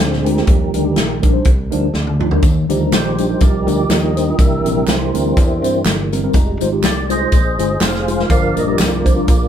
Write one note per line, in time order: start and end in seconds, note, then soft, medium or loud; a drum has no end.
0.00 0.41 D2 medium
0.00 0.22 A#2 medium
0.00 0.44 D3 soft
0.00 0.45 G#3 medium
0.00 0.45 C4 medium
0.00 0.23 D4 medium
0.00 0.27 G#4 medium
0.13 snare soft
0.24 0.33 G#3 medium
0.24 0.46 D4 medium
0.24 0.33 D4 medium
0.24 0.33 F4 medium
0.24 1.19 G4 medium
0.24 0.33 G4 medium
0.24 1.19 A#4 loud
0.24 closed hi-hat medium
0.36 0.48 G#3 medium
0.36 0.48 D4 medium
0.36 0.48 F4 medium
0.36 0.48 G#4 medium
0.36 snare soft
0.46 0.71 D#2 medium
0.46 1.19 D#3 medium
0.46 0.81 F3 soft
0.46 0.81 G3 soft
0.46 0.82 D4 medium
0.46 kick loud
0.46 closed hi-hat medium
0.74 0.94 D2 medium
0.74 0.81 G3 medium
0.74 0.81 D4 medium
0.74 0.81 D#4 medium
0.74 0.81 A#4 medium
0.74 closed hi-hat medium
0.84 0.99 G3 medium
0.84 0.99 D4 medium
0.84 0.99 D#4 medium
0.84 0.99 G4 medium
0.96 1.38 A#1 medium
0.96 snare loud
0.96 closed hi-hat medium
1.22 1.30 G3 medium
1.22 1.30 D4 medium
1.22 1.30 D#4 medium
1.22 1.30 A#4 medium
1.22 kick medium
1.22 closed hi-hat medium
1.33 1.48 G3 medium
1.33 1.48 D4 medium
1.33 1.48 D#4 medium
1.33 1.48 C5 medium
1.45 1.69 C2 medium
1.45 kick loud
1.45 closed hi-hat medium
1.70 1.91 D2 medium
1.70 1.93 F3 soft
1.70 1.85 G3 medium
1.70 1.93 G3 soft
1.70 1.85 D4 medium
1.70 1.93 D4 soft
1.70 1.85 D#4 medium
1.70 1.85 A#4 medium
1.70 closed hi-hat medium
1.94 2.36 D2 medium
1.94 snare soft
2.07 high tom medium
2.19 2.27 G3 medium
2.19 2.27 D4 medium
2.19 2.27 D#4 medium
2.19 2.27 F4 medium
2.19 mid tom medium
2.31 2.46 G3 medium
2.31 2.46 D4 medium
2.31 2.46 D#4 medium
2.31 2.46 A#4 medium
2.31 floor tom medium
2.42 2.66 D#2 medium
2.42 3.15 D#3 medium
2.42 kick loud
2.42 closed hi-hat medium
2.42 tambourine medium
2.69 2.89 D2 medium
2.69 3.89 F3 medium
2.69 2.76 G3 medium
2.69 3.90 G3 soft
2.69 2.77 D4 medium
2.69 2.77 D#4 medium
2.69 4.35 D#4 medium
2.69 2.77 G4 medium
2.69 closed hi-hat medium
2.69 tambourine soft
2.80 2.95 G3 medium
2.80 2.95 D4 medium
2.80 2.95 D#4 medium
2.80 2.95 A#4 medium
2.92 3.34 A#1 medium
2.92 3.40 G4 medium
2.92 3.43 C5 medium
2.92 snare loud
2.92 clap medium
2.92 closed hi-hat medium
2.92 tambourine loud
3.18 3.26 G3 medium
3.18 3.26 D4 medium
3.18 3.26 D#4 medium
3.18 3.26 G4 medium
3.18 closed hi-hat medium
3.18 tambourine medium
3.29 3.44 G3 medium
3.29 3.44 D4 medium
3.29 3.44 D#4 medium
3.29 3.44 A#4 medium
3.40 3.64 C2 loud
3.40 3.90 G4 medium
3.40 3.90 A#4 medium
3.40 3.92 D5 medium
3.40 kick loud
3.40 closed hi-hat medium
3.40 tambourine medium
3.67 3.86 D2 loud
3.67 3.81 G3 medium
3.67 3.81 D4 medium
3.67 3.81 D#4 medium
3.67 3.81 A#4 medium
3.67 closed hi-hat medium
3.67 tambourine medium
3.89 4.31 D#2 medium
3.89 4.14 F3 soft
3.89 4.15 G3 soft
3.89 4.15 D4 soft
3.89 4.36 G4 medium
3.89 4.36 A#4 medium
3.89 4.41 D#5 medium
3.89 snare loud
3.89 clap medium
3.89 closed hi-hat medium
3.89 tambourine medium
4.16 4.23 G3 medium
4.16 4.24 D4 medium
4.16 4.24 D#4 medium
4.16 4.24 C5 medium
4.16 closed hi-hat medium
4.16 tambourine soft
4.27 4.39 G3 medium
4.27 4.39 D4 medium
4.27 4.39 D#4 medium
4.27 4.39 F4 medium
4.38 4.62 C2 medium
4.38 5.10 C3 medium
4.38 6.30 E3 medium
4.38 6.31 A#3 soft
4.38 6.31 D4 medium
4.38 4.88 G4 medium
4.38 5.33 A#4 medium
4.38 4.85 E5 loud
4.38 kick loud
4.38 closed hi-hat medium
4.38 tambourine medium
4.65 4.84 A#1 medium
4.65 4.72 G3 medium
4.65 4.72 C4 medium
4.65 4.72 E4 medium
4.65 4.73 A#4 medium
4.65 closed hi-hat medium
4.65 tambourine soft
4.76 4.90 G3 medium
4.76 4.91 C4 medium
4.76 4.91 E4 medium
4.76 4.91 A#4 medium
4.87 5.10 C2 medium
4.87 5.82 E4 medium
4.87 5.82 G4 medium
4.87 5.82 C5 medium
4.87 snare loud
4.87 clap medium
4.87 closed hi-hat medium
4.87 tambourine loud
5.14 5.33 D2 medium
5.14 5.21 G3 medium
5.14 5.21 C4 medium
5.14 5.21 E4 medium
5.14 5.21 A#4 medium
5.14 closed hi-hat medium
5.14 tambourine medium
5.25 5.39 G3 medium
5.25 5.39 C4 medium
5.25 5.40 E4 medium
5.25 5.40 A#4 medium
5.37 5.60 E2 loud
5.37 kick loud
5.37 closed hi-hat medium
5.37 tambourine medium
5.62 5.81 G2 medium
5.62 5.77 G3 medium
5.62 5.77 C4 medium
5.62 5.77 E4 medium
5.62 5.77 C5 medium
5.62 closed hi-hat medium
5.62 tambourine medium
5.85 6.26 G1 medium
5.85 snare loud
5.85 clap medium
5.85 closed hi-hat medium
5.85 tambourine medium
6.13 6.19 G3 medium
6.13 6.19 C4 medium
6.13 6.19 E4 medium
6.13 6.19 A#4 medium
6.13 closed hi-hat medium
6.13 tambourine soft
6.23 6.34 G3 medium
6.23 6.34 C4 medium
6.23 6.35 E4 medium
6.23 6.35 A#4 medium
6.33 6.57 F1 loud
6.33 6.68 G3 medium
6.33 6.69 G#3 soft
6.33 6.69 D#4 medium
6.33 kick loud
6.33 closed hi-hat medium
6.33 tambourine medium
6.61 6.80 G#1 medium
6.61 6.68 G#3 medium
6.61 6.68 D#4 medium
6.61 6.68 F4 medium
6.61 6.68 C5 medium
6.61 closed hi-hat medium
6.61 tambourine soft
6.72 6.86 G#3 medium
6.72 6.86 D#4 medium
6.72 6.86 F4 medium
6.72 6.86 G4 medium
6.82 7.24 C2 medium
6.82 7.09 D5 medium
6.82 snare loud
6.82 clap loud
6.82 closed hi-hat medium
6.82 tambourine loud
7.09 7.16 G#3 medium
7.09 7.16 D#4 medium
7.09 7.16 F4 medium
7.09 7.80 G#4 medium
7.09 7.17 C5 medium
7.09 7.80 C5 medium
7.09 7.84 D#5 loud
7.09 closed hi-hat medium
7.09 tambourine medium
7.21 7.35 G#3 medium
7.21 7.35 D#4 medium
7.21 7.35 F4 medium
7.21 7.35 C5 medium
7.32 7.55 A#1 medium
7.32 kick loud
7.32 closed hi-hat medium
7.32 tambourine medium
7.59 7.77 G1 medium
7.59 7.72 G#3 medium
7.59 7.72 D#4 medium
7.59 7.72 F4 medium
7.59 7.73 C5 medium
7.59 closed hi-hat medium
7.59 tambourine medium
7.81 8.23 F1 medium
7.81 8.26 G#4 medium
7.81 8.26 C5 medium
7.81 8.30 F5 medium
7.81 snare loud
7.81 clap medium
7.81 closed hi-hat medium
7.81 tambourine medium
7.95 snare soft
8.08 8.14 G#3 medium
8.08 8.15 D#4 medium
8.08 8.14 F4 medium
8.08 8.15 G#4 medium
8.08 closed hi-hat medium
8.08 tambourine soft
8.19 8.30 G#3 medium
8.19 8.30 D#4 medium
8.19 8.30 F4 medium
8.19 8.30 A#4 medium
8.19 snare soft
8.30 8.53 G1 medium
8.30 9.02 G2 medium
8.30 9.48 F3 medium
8.30 9.48 A#3 soft
8.30 9.48 D4 medium
8.30 8.80 A#4 medium
8.30 8.79 D5 medium
8.30 8.55 F5 loud
8.30 kick loud
8.30 closed hi-hat medium
8.30 tambourine medium
8.56 8.76 A#1 medium
8.56 8.63 G3 medium
8.56 8.63 D4 medium
8.56 8.63 F4 medium
8.56 8.63 A#4 medium
8.56 8.80 D#5 medium
8.56 closed hi-hat medium
8.56 tambourine medium
8.66 8.81 G3 medium
8.66 8.81 D4 medium
8.66 8.81 F4 medium
8.66 8.81 G4 medium
8.79 9.21 C2 medium
8.79 9.48 F4 medium
8.79 9.48 A#4 soft
8.79 9.48 D5 medium
8.79 snare loud
8.79 clap loud
8.79 closed hi-hat medium
8.79 tambourine loud
9.05 9.12 G3 medium
9.05 9.12 D4 medium
9.05 9.12 F4 medium
9.05 9.12 C5 medium
9.05 kick medium
9.05 closed hi-hat medium
9.05 tambourine soft
9.16 9.30 G3 medium
9.16 9.30 D4 medium
9.16 9.30 F4 medium
9.16 9.30 A#4 medium
9.28 9.48 A#1 medium
9.28 kick loud
9.28 closed hi-hat medium
9.28 tambourine medium